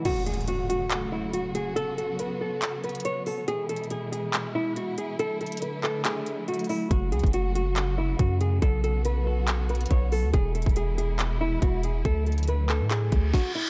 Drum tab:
CC |x-----------------------------------------------------------------------------------------------|------------------------------------------------------------------------------------------------|------------------------------------------------------------------------------------------------|------------------------------------------------------------------------------------------------|
HH |x-----------x---x---x---x-----------x-----------x-----------------------x-----------x-----------|x-----------x-----------x-----------------------x-----------x--x--x--x--x-----------o-----------|x-----------x---x---x---x-----------x-----------x-----------------------x-----------x-----------|x-----------x--x--x--x--x-----------------------x-----------x-----------x--x--x--x--o-----------|
CP |------------------------------------------------x-----------------------------------------------|------------------------------------------------x-----------------------------------------------|------------------------------------------------x-----------------------------------------------|------------------------------------x-----------x-----------------------------------------------|
SD |------------------------------------------------------------------------------------------------|------------------------------------------------------------------------------------------------|------------------------------------------------------------------------------------------------|------------------------------------------------------------------------------------------------|
BD |------------------------------------------------------------------------------------------------|------------------------------------------------------------------------------------------------|------------------------------------------------------------------------------------------------|------------------------------------------------------------------------------------------------|

CC |------------------------------------------------------------------------------------------------|------------------------------------------------------------------------------------------------|------------------------------------------------------------------------------------------------|------------------------------------------------------------------------------------------------|
HH |x-----------x---x---x---x-----------x-----------x-----------------------x-----------x-----------|x-----------x-----------x-----------------------x-----------x--x--x--x--x-----------o-----------|x-----------x---x---x---x-----------x-----------x-----------------------x-----------x-----------|x-----------x--x--x--x--x-----------------------x-----------x-----------------------------------|
CP |------------------------------------------------x-----------------------------------------------|------------------------------------------------x-----------------------------------------------|------------------------------------------------x-----------------------------------------------|------------------------------------x-----------x-----------------------------------------------|
SD |------------------------------------------------------------------------------------------------|------------------------------------------------------------------------------------------------|------------------------------------------------------------------------------------------------|------------------------------------------------------------------------o-----------------------|
BD |o-----------------o-----------------------------------------------------o-----------------------|o-----------------------------------------------------------------------o-----------------------|o-----------------o-----------------------------------------------------o-----------------------|o-----------------------------------------------------------o-----------o-----------------------|